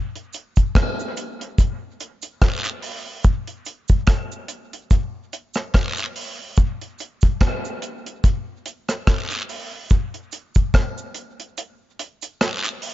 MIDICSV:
0, 0, Header, 1, 2, 480
1, 0, Start_track
1, 0, Tempo, 833333
1, 1870, Time_signature, 4, 2, 24, 8
1, 7452, End_track
2, 0, Start_track
2, 0, Title_t, "Drums"
2, 89, Note_on_c, 9, 42, 47
2, 147, Note_off_c, 9, 42, 0
2, 190, Note_on_c, 9, 69, 55
2, 198, Note_on_c, 9, 42, 66
2, 248, Note_off_c, 9, 69, 0
2, 256, Note_off_c, 9, 42, 0
2, 323, Note_on_c, 9, 69, 75
2, 329, Note_on_c, 9, 36, 79
2, 331, Note_on_c, 9, 42, 53
2, 381, Note_off_c, 9, 69, 0
2, 387, Note_off_c, 9, 36, 0
2, 388, Note_off_c, 9, 42, 0
2, 433, Note_on_c, 9, 36, 114
2, 437, Note_on_c, 9, 42, 85
2, 440, Note_on_c, 9, 37, 107
2, 491, Note_off_c, 9, 36, 0
2, 494, Note_off_c, 9, 42, 0
2, 498, Note_off_c, 9, 37, 0
2, 574, Note_on_c, 9, 69, 53
2, 631, Note_off_c, 9, 69, 0
2, 673, Note_on_c, 9, 69, 64
2, 675, Note_on_c, 9, 42, 73
2, 730, Note_off_c, 9, 69, 0
2, 733, Note_off_c, 9, 42, 0
2, 813, Note_on_c, 9, 42, 50
2, 871, Note_off_c, 9, 42, 0
2, 912, Note_on_c, 9, 36, 107
2, 913, Note_on_c, 9, 69, 78
2, 920, Note_on_c, 9, 42, 87
2, 970, Note_off_c, 9, 36, 0
2, 970, Note_off_c, 9, 69, 0
2, 978, Note_off_c, 9, 42, 0
2, 1153, Note_on_c, 9, 69, 54
2, 1155, Note_on_c, 9, 42, 70
2, 1211, Note_off_c, 9, 69, 0
2, 1213, Note_off_c, 9, 42, 0
2, 1279, Note_on_c, 9, 69, 84
2, 1283, Note_on_c, 9, 42, 50
2, 1337, Note_off_c, 9, 69, 0
2, 1341, Note_off_c, 9, 42, 0
2, 1391, Note_on_c, 9, 74, 67
2, 1392, Note_on_c, 9, 36, 106
2, 1392, Note_on_c, 9, 37, 100
2, 1394, Note_on_c, 9, 42, 82
2, 1449, Note_off_c, 9, 36, 0
2, 1449, Note_off_c, 9, 74, 0
2, 1450, Note_off_c, 9, 37, 0
2, 1452, Note_off_c, 9, 42, 0
2, 1521, Note_on_c, 9, 69, 78
2, 1528, Note_on_c, 9, 42, 54
2, 1578, Note_off_c, 9, 69, 0
2, 1585, Note_off_c, 9, 42, 0
2, 1627, Note_on_c, 9, 46, 73
2, 1634, Note_on_c, 9, 69, 52
2, 1684, Note_off_c, 9, 46, 0
2, 1692, Note_off_c, 9, 69, 0
2, 1866, Note_on_c, 9, 69, 71
2, 1868, Note_on_c, 9, 42, 81
2, 1869, Note_on_c, 9, 36, 101
2, 1924, Note_off_c, 9, 69, 0
2, 1926, Note_off_c, 9, 42, 0
2, 1927, Note_off_c, 9, 36, 0
2, 2001, Note_on_c, 9, 42, 45
2, 2059, Note_off_c, 9, 42, 0
2, 2104, Note_on_c, 9, 69, 51
2, 2110, Note_on_c, 9, 42, 68
2, 2162, Note_off_c, 9, 69, 0
2, 2168, Note_off_c, 9, 42, 0
2, 2236, Note_on_c, 9, 69, 73
2, 2243, Note_on_c, 9, 42, 47
2, 2245, Note_on_c, 9, 36, 83
2, 2294, Note_off_c, 9, 69, 0
2, 2301, Note_off_c, 9, 42, 0
2, 2302, Note_off_c, 9, 36, 0
2, 2343, Note_on_c, 9, 42, 93
2, 2347, Note_on_c, 9, 36, 116
2, 2347, Note_on_c, 9, 37, 105
2, 2400, Note_off_c, 9, 42, 0
2, 2404, Note_off_c, 9, 37, 0
2, 2405, Note_off_c, 9, 36, 0
2, 2487, Note_on_c, 9, 69, 52
2, 2545, Note_off_c, 9, 69, 0
2, 2583, Note_on_c, 9, 42, 71
2, 2585, Note_on_c, 9, 69, 66
2, 2640, Note_off_c, 9, 42, 0
2, 2643, Note_off_c, 9, 69, 0
2, 2726, Note_on_c, 9, 42, 52
2, 2784, Note_off_c, 9, 42, 0
2, 2826, Note_on_c, 9, 69, 80
2, 2827, Note_on_c, 9, 36, 108
2, 2831, Note_on_c, 9, 42, 81
2, 2883, Note_off_c, 9, 69, 0
2, 2885, Note_off_c, 9, 36, 0
2, 2888, Note_off_c, 9, 42, 0
2, 3069, Note_on_c, 9, 69, 51
2, 3070, Note_on_c, 9, 42, 71
2, 3127, Note_off_c, 9, 69, 0
2, 3128, Note_off_c, 9, 42, 0
2, 3191, Note_on_c, 9, 69, 86
2, 3199, Note_on_c, 9, 42, 46
2, 3201, Note_on_c, 9, 37, 60
2, 3249, Note_off_c, 9, 69, 0
2, 3257, Note_off_c, 9, 42, 0
2, 3258, Note_off_c, 9, 37, 0
2, 3305, Note_on_c, 9, 74, 74
2, 3308, Note_on_c, 9, 36, 103
2, 3311, Note_on_c, 9, 37, 97
2, 3312, Note_on_c, 9, 42, 88
2, 3363, Note_off_c, 9, 74, 0
2, 3366, Note_off_c, 9, 36, 0
2, 3368, Note_off_c, 9, 37, 0
2, 3370, Note_off_c, 9, 42, 0
2, 3438, Note_on_c, 9, 69, 85
2, 3445, Note_on_c, 9, 42, 55
2, 3495, Note_off_c, 9, 69, 0
2, 3503, Note_off_c, 9, 42, 0
2, 3547, Note_on_c, 9, 46, 68
2, 3548, Note_on_c, 9, 69, 50
2, 3605, Note_off_c, 9, 46, 0
2, 3606, Note_off_c, 9, 69, 0
2, 3781, Note_on_c, 9, 69, 72
2, 3788, Note_on_c, 9, 36, 102
2, 3788, Note_on_c, 9, 42, 78
2, 3839, Note_off_c, 9, 69, 0
2, 3845, Note_off_c, 9, 42, 0
2, 3846, Note_off_c, 9, 36, 0
2, 3925, Note_on_c, 9, 42, 44
2, 3983, Note_off_c, 9, 42, 0
2, 4024, Note_on_c, 9, 69, 50
2, 4034, Note_on_c, 9, 42, 64
2, 4081, Note_off_c, 9, 69, 0
2, 4091, Note_off_c, 9, 42, 0
2, 4155, Note_on_c, 9, 69, 79
2, 4164, Note_on_c, 9, 36, 86
2, 4164, Note_on_c, 9, 42, 49
2, 4213, Note_off_c, 9, 69, 0
2, 4222, Note_off_c, 9, 36, 0
2, 4222, Note_off_c, 9, 42, 0
2, 4266, Note_on_c, 9, 42, 85
2, 4268, Note_on_c, 9, 36, 111
2, 4270, Note_on_c, 9, 37, 104
2, 4323, Note_off_c, 9, 42, 0
2, 4325, Note_off_c, 9, 36, 0
2, 4327, Note_off_c, 9, 37, 0
2, 4405, Note_on_c, 9, 69, 52
2, 4463, Note_off_c, 9, 69, 0
2, 4505, Note_on_c, 9, 42, 70
2, 4509, Note_on_c, 9, 69, 60
2, 4563, Note_off_c, 9, 42, 0
2, 4566, Note_off_c, 9, 69, 0
2, 4645, Note_on_c, 9, 42, 51
2, 4703, Note_off_c, 9, 42, 0
2, 4746, Note_on_c, 9, 36, 109
2, 4747, Note_on_c, 9, 69, 77
2, 4751, Note_on_c, 9, 42, 85
2, 4804, Note_off_c, 9, 36, 0
2, 4804, Note_off_c, 9, 69, 0
2, 4808, Note_off_c, 9, 42, 0
2, 4986, Note_on_c, 9, 42, 71
2, 4996, Note_on_c, 9, 69, 55
2, 5044, Note_off_c, 9, 42, 0
2, 5054, Note_off_c, 9, 69, 0
2, 5118, Note_on_c, 9, 42, 46
2, 5120, Note_on_c, 9, 37, 64
2, 5121, Note_on_c, 9, 69, 84
2, 5176, Note_off_c, 9, 42, 0
2, 5177, Note_off_c, 9, 37, 0
2, 5179, Note_off_c, 9, 69, 0
2, 5226, Note_on_c, 9, 36, 97
2, 5226, Note_on_c, 9, 37, 100
2, 5227, Note_on_c, 9, 42, 90
2, 5229, Note_on_c, 9, 74, 71
2, 5283, Note_off_c, 9, 37, 0
2, 5284, Note_off_c, 9, 36, 0
2, 5285, Note_off_c, 9, 42, 0
2, 5287, Note_off_c, 9, 74, 0
2, 5360, Note_on_c, 9, 42, 54
2, 5361, Note_on_c, 9, 69, 79
2, 5417, Note_off_c, 9, 42, 0
2, 5419, Note_off_c, 9, 69, 0
2, 5467, Note_on_c, 9, 46, 73
2, 5468, Note_on_c, 9, 69, 51
2, 5525, Note_off_c, 9, 46, 0
2, 5526, Note_off_c, 9, 69, 0
2, 5703, Note_on_c, 9, 69, 73
2, 5707, Note_on_c, 9, 36, 101
2, 5709, Note_on_c, 9, 42, 80
2, 5760, Note_off_c, 9, 69, 0
2, 5765, Note_off_c, 9, 36, 0
2, 5767, Note_off_c, 9, 42, 0
2, 5842, Note_on_c, 9, 42, 47
2, 5899, Note_off_c, 9, 42, 0
2, 5943, Note_on_c, 9, 69, 53
2, 5948, Note_on_c, 9, 42, 66
2, 6000, Note_off_c, 9, 69, 0
2, 6006, Note_off_c, 9, 42, 0
2, 6076, Note_on_c, 9, 69, 80
2, 6082, Note_on_c, 9, 36, 83
2, 6082, Note_on_c, 9, 42, 50
2, 6133, Note_off_c, 9, 69, 0
2, 6139, Note_off_c, 9, 42, 0
2, 6140, Note_off_c, 9, 36, 0
2, 6186, Note_on_c, 9, 36, 112
2, 6186, Note_on_c, 9, 42, 84
2, 6190, Note_on_c, 9, 37, 110
2, 6244, Note_off_c, 9, 36, 0
2, 6244, Note_off_c, 9, 42, 0
2, 6247, Note_off_c, 9, 37, 0
2, 6323, Note_on_c, 9, 69, 52
2, 6381, Note_off_c, 9, 69, 0
2, 6419, Note_on_c, 9, 42, 69
2, 6425, Note_on_c, 9, 69, 63
2, 6477, Note_off_c, 9, 42, 0
2, 6482, Note_off_c, 9, 69, 0
2, 6564, Note_on_c, 9, 42, 53
2, 6622, Note_off_c, 9, 42, 0
2, 6668, Note_on_c, 9, 69, 76
2, 6669, Note_on_c, 9, 42, 87
2, 6725, Note_off_c, 9, 69, 0
2, 6727, Note_off_c, 9, 42, 0
2, 6909, Note_on_c, 9, 42, 75
2, 6911, Note_on_c, 9, 69, 52
2, 6966, Note_off_c, 9, 42, 0
2, 6969, Note_off_c, 9, 69, 0
2, 7038, Note_on_c, 9, 69, 78
2, 7042, Note_on_c, 9, 42, 47
2, 7096, Note_off_c, 9, 69, 0
2, 7100, Note_off_c, 9, 42, 0
2, 7147, Note_on_c, 9, 74, 68
2, 7149, Note_on_c, 9, 37, 94
2, 7150, Note_on_c, 9, 42, 85
2, 7205, Note_off_c, 9, 74, 0
2, 7206, Note_off_c, 9, 37, 0
2, 7208, Note_off_c, 9, 42, 0
2, 7282, Note_on_c, 9, 69, 78
2, 7283, Note_on_c, 9, 42, 50
2, 7340, Note_off_c, 9, 42, 0
2, 7340, Note_off_c, 9, 69, 0
2, 7384, Note_on_c, 9, 46, 68
2, 7389, Note_on_c, 9, 69, 50
2, 7442, Note_off_c, 9, 46, 0
2, 7446, Note_off_c, 9, 69, 0
2, 7452, End_track
0, 0, End_of_file